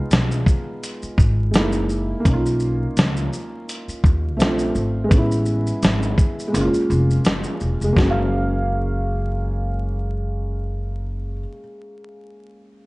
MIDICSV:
0, 0, Header, 1, 6, 480
1, 0, Start_track
1, 0, Key_signature, 6, "major"
1, 0, Tempo, 714286
1, 1513, Time_signature, 4, 2, 24, 8
1, 8643, End_track
2, 0, Start_track
2, 0, Title_t, "Kalimba"
2, 0, Program_c, 0, 108
2, 5361, Note_on_c, 0, 66, 79
2, 6770, Note_off_c, 0, 66, 0
2, 8643, End_track
3, 0, Start_track
3, 0, Title_t, "Felt piano"
3, 0, Program_c, 1, 0
3, 0, Control_c, 1, 64, 127
3, 0, Note_on_c, 1, 56, 82
3, 0, Note_on_c, 1, 59, 72
3, 0, Note_on_c, 1, 63, 84
3, 0, Note_on_c, 1, 65, 89
3, 987, Note_off_c, 1, 56, 0
3, 1001, Note_off_c, 1, 59, 0
3, 1014, Note_on_c, 1, 56, 68
3, 1016, Note_off_c, 1, 63, 0
3, 1030, Note_on_c, 1, 57, 56
3, 1031, Note_off_c, 1, 65, 0
3, 1042, Control_c, 1, 64, 0
3, 1045, Note_on_c, 1, 63, 67
3, 1061, Note_on_c, 1, 64, 76
3, 1074, Note_on_c, 1, 58, 72
3, 1080, Note_off_c, 1, 57, 0
3, 1176, Control_c, 1, 64, 127
3, 1468, Note_off_c, 1, 58, 0
3, 1478, Note_on_c, 1, 58, 80
3, 1504, Note_off_c, 1, 56, 0
3, 1509, Note_on_c, 1, 61, 69
3, 1519, Note_off_c, 1, 63, 0
3, 1523, Control_c, 1, 64, 0
3, 1527, Note_off_c, 1, 64, 0
3, 1539, Note_on_c, 1, 63, 76
3, 1567, Note_on_c, 1, 65, 91
3, 1630, Control_c, 1, 64, 127
3, 2909, Note_off_c, 1, 58, 0
3, 2924, Note_off_c, 1, 61, 0
3, 2935, Note_on_c, 1, 57, 80
3, 2939, Note_off_c, 1, 63, 0
3, 2948, Note_on_c, 1, 60, 67
3, 2953, Note_off_c, 1, 65, 0
3, 2962, Control_c, 1, 64, 0
3, 2965, Note_on_c, 1, 62, 63
3, 2978, Note_on_c, 1, 65, 85
3, 3093, Control_c, 1, 64, 127
3, 3388, Note_on_c, 1, 56, 88
3, 3419, Note_on_c, 1, 59, 75
3, 3424, Note_off_c, 1, 57, 0
3, 3431, Note_off_c, 1, 60, 0
3, 3439, Note_off_c, 1, 62, 0
3, 3441, Control_c, 1, 64, 0
3, 3445, Note_off_c, 1, 65, 0
3, 3447, Note_on_c, 1, 61, 70
3, 3479, Note_on_c, 1, 64, 83
3, 3580, Control_c, 1, 64, 127
3, 4343, Note_off_c, 1, 56, 0
3, 4353, Note_on_c, 1, 56, 79
3, 4367, Note_off_c, 1, 59, 0
3, 4381, Note_off_c, 1, 61, 0
3, 4383, Note_on_c, 1, 58, 69
3, 4397, Note_off_c, 1, 64, 0
3, 4401, Control_c, 1, 64, 0
3, 4413, Note_on_c, 1, 61, 70
3, 4442, Note_on_c, 1, 65, 93
3, 4533, Control_c, 1, 64, 127
3, 5258, Note_off_c, 1, 56, 0
3, 5268, Note_on_c, 1, 56, 79
3, 5317, Note_off_c, 1, 58, 0
3, 5327, Note_on_c, 1, 58, 76
3, 5344, Note_off_c, 1, 61, 0
3, 5359, Note_off_c, 1, 65, 0
3, 5362, Control_c, 1, 64, 0
3, 5389, Note_on_c, 1, 61, 80
3, 5446, Note_on_c, 1, 77, 95
3, 5496, Control_c, 1, 64, 127
3, 7602, Note_off_c, 1, 56, 0
3, 7660, Note_off_c, 1, 58, 0
3, 7722, Note_off_c, 1, 61, 0
3, 7779, Note_off_c, 1, 77, 0
3, 8643, End_track
4, 0, Start_track
4, 0, Title_t, "Upright bass"
4, 0, Program_c, 2, 32
4, 75, Note_on_c, 2, 35, 97
4, 271, Note_off_c, 2, 35, 0
4, 793, Note_on_c, 2, 32, 96
4, 1034, Note_off_c, 2, 32, 0
4, 1034, Note_on_c, 2, 30, 101
4, 1427, Note_off_c, 2, 30, 0
4, 1515, Note_on_c, 2, 35, 104
4, 1908, Note_off_c, 2, 35, 0
4, 1995, Note_on_c, 2, 37, 93
4, 2191, Note_off_c, 2, 37, 0
4, 2714, Note_on_c, 2, 39, 91
4, 2955, Note_off_c, 2, 39, 0
4, 2955, Note_on_c, 2, 34, 93
4, 3151, Note_off_c, 2, 34, 0
4, 3193, Note_on_c, 2, 32, 82
4, 3390, Note_off_c, 2, 32, 0
4, 3435, Note_on_c, 2, 33, 106
4, 3828, Note_off_c, 2, 33, 0
4, 3915, Note_on_c, 2, 32, 96
4, 4111, Note_off_c, 2, 32, 0
4, 4395, Note_on_c, 2, 30, 110
4, 4503, Note_off_c, 2, 30, 0
4, 4636, Note_on_c, 2, 29, 94
4, 4832, Note_off_c, 2, 29, 0
4, 4878, Note_on_c, 2, 30, 91
4, 4985, Note_off_c, 2, 30, 0
4, 5116, Note_on_c, 2, 28, 86
4, 5224, Note_off_c, 2, 28, 0
4, 5249, Note_on_c, 2, 29, 79
4, 5336, Note_off_c, 2, 29, 0
4, 5353, Note_on_c, 2, 30, 98
4, 7686, Note_off_c, 2, 30, 0
4, 8643, End_track
5, 0, Start_track
5, 0, Title_t, "Muted upright bass strokes"
5, 691, Note_on_c, 9, 29, 48
5, 758, Note_off_c, 9, 29, 0
5, 2608, Note_on_c, 9, 29, 47
5, 2675, Note_off_c, 9, 29, 0
5, 4529, Note_on_c, 9, 29, 47
5, 4596, Note_off_c, 9, 29, 0
5, 8643, End_track
6, 0, Start_track
6, 0, Title_t, "Drums"
6, 75, Note_on_c, 9, 42, 61
6, 75, Note_on_c, 9, 82, 66
6, 88, Note_on_c, 9, 38, 116
6, 142, Note_off_c, 9, 42, 0
6, 142, Note_off_c, 9, 82, 0
6, 155, Note_off_c, 9, 38, 0
6, 211, Note_on_c, 9, 82, 47
6, 278, Note_off_c, 9, 82, 0
6, 312, Note_on_c, 9, 36, 98
6, 320, Note_on_c, 9, 82, 54
6, 379, Note_off_c, 9, 36, 0
6, 387, Note_off_c, 9, 82, 0
6, 561, Note_on_c, 9, 42, 78
6, 561, Note_on_c, 9, 82, 80
6, 628, Note_off_c, 9, 42, 0
6, 628, Note_off_c, 9, 82, 0
6, 689, Note_on_c, 9, 82, 42
6, 756, Note_off_c, 9, 82, 0
6, 792, Note_on_c, 9, 36, 87
6, 802, Note_on_c, 9, 82, 39
6, 859, Note_off_c, 9, 36, 0
6, 869, Note_off_c, 9, 82, 0
6, 1034, Note_on_c, 9, 42, 69
6, 1034, Note_on_c, 9, 82, 65
6, 1045, Note_on_c, 9, 38, 116
6, 1102, Note_off_c, 9, 42, 0
6, 1102, Note_off_c, 9, 82, 0
6, 1113, Note_off_c, 9, 38, 0
6, 1160, Note_on_c, 9, 82, 57
6, 1227, Note_off_c, 9, 82, 0
6, 1273, Note_on_c, 9, 82, 42
6, 1340, Note_off_c, 9, 82, 0
6, 1514, Note_on_c, 9, 36, 108
6, 1516, Note_on_c, 9, 42, 62
6, 1516, Note_on_c, 9, 82, 57
6, 1581, Note_off_c, 9, 36, 0
6, 1583, Note_off_c, 9, 42, 0
6, 1583, Note_off_c, 9, 82, 0
6, 1653, Note_on_c, 9, 82, 51
6, 1720, Note_off_c, 9, 82, 0
6, 1747, Note_on_c, 9, 82, 46
6, 1814, Note_off_c, 9, 82, 0
6, 1995, Note_on_c, 9, 42, 67
6, 1995, Note_on_c, 9, 82, 66
6, 2008, Note_on_c, 9, 38, 113
6, 2062, Note_off_c, 9, 42, 0
6, 2062, Note_off_c, 9, 82, 0
6, 2075, Note_off_c, 9, 38, 0
6, 2129, Note_on_c, 9, 82, 46
6, 2196, Note_off_c, 9, 82, 0
6, 2239, Note_on_c, 9, 82, 56
6, 2306, Note_off_c, 9, 82, 0
6, 2482, Note_on_c, 9, 42, 74
6, 2482, Note_on_c, 9, 82, 80
6, 2549, Note_off_c, 9, 42, 0
6, 2549, Note_off_c, 9, 82, 0
6, 2613, Note_on_c, 9, 82, 42
6, 2680, Note_off_c, 9, 82, 0
6, 2713, Note_on_c, 9, 36, 84
6, 2724, Note_on_c, 9, 82, 42
6, 2780, Note_off_c, 9, 36, 0
6, 2791, Note_off_c, 9, 82, 0
6, 2957, Note_on_c, 9, 42, 65
6, 2957, Note_on_c, 9, 82, 67
6, 2968, Note_on_c, 9, 38, 113
6, 3025, Note_off_c, 9, 42, 0
6, 3025, Note_off_c, 9, 82, 0
6, 3036, Note_off_c, 9, 38, 0
6, 3083, Note_on_c, 9, 82, 55
6, 3150, Note_off_c, 9, 82, 0
6, 3194, Note_on_c, 9, 82, 45
6, 3261, Note_off_c, 9, 82, 0
6, 3434, Note_on_c, 9, 36, 116
6, 3437, Note_on_c, 9, 42, 60
6, 3437, Note_on_c, 9, 82, 59
6, 3501, Note_off_c, 9, 36, 0
6, 3504, Note_off_c, 9, 42, 0
6, 3504, Note_off_c, 9, 82, 0
6, 3572, Note_on_c, 9, 82, 48
6, 3639, Note_off_c, 9, 82, 0
6, 3667, Note_on_c, 9, 82, 48
6, 3735, Note_off_c, 9, 82, 0
6, 3810, Note_on_c, 9, 82, 47
6, 3877, Note_off_c, 9, 82, 0
6, 3915, Note_on_c, 9, 42, 66
6, 3915, Note_on_c, 9, 82, 67
6, 3928, Note_on_c, 9, 38, 108
6, 3982, Note_off_c, 9, 42, 0
6, 3982, Note_off_c, 9, 82, 0
6, 3995, Note_off_c, 9, 38, 0
6, 4049, Note_on_c, 9, 82, 45
6, 4117, Note_off_c, 9, 82, 0
6, 4151, Note_on_c, 9, 36, 93
6, 4156, Note_on_c, 9, 82, 55
6, 4218, Note_off_c, 9, 36, 0
6, 4223, Note_off_c, 9, 82, 0
6, 4297, Note_on_c, 9, 82, 47
6, 4364, Note_off_c, 9, 82, 0
6, 4400, Note_on_c, 9, 42, 78
6, 4400, Note_on_c, 9, 82, 83
6, 4467, Note_off_c, 9, 42, 0
6, 4467, Note_off_c, 9, 82, 0
6, 4529, Note_on_c, 9, 82, 43
6, 4596, Note_off_c, 9, 82, 0
6, 4642, Note_on_c, 9, 82, 38
6, 4709, Note_off_c, 9, 82, 0
6, 4777, Note_on_c, 9, 82, 44
6, 4844, Note_off_c, 9, 82, 0
6, 4871, Note_on_c, 9, 42, 64
6, 4871, Note_on_c, 9, 82, 65
6, 4882, Note_on_c, 9, 38, 117
6, 4939, Note_off_c, 9, 42, 0
6, 4939, Note_off_c, 9, 82, 0
6, 4949, Note_off_c, 9, 38, 0
6, 4999, Note_on_c, 9, 82, 54
6, 5066, Note_off_c, 9, 82, 0
6, 5110, Note_on_c, 9, 82, 41
6, 5177, Note_off_c, 9, 82, 0
6, 5252, Note_on_c, 9, 82, 52
6, 5319, Note_off_c, 9, 82, 0
6, 5352, Note_on_c, 9, 36, 99
6, 5365, Note_on_c, 9, 38, 102
6, 5419, Note_off_c, 9, 36, 0
6, 5433, Note_off_c, 9, 38, 0
6, 8643, End_track
0, 0, End_of_file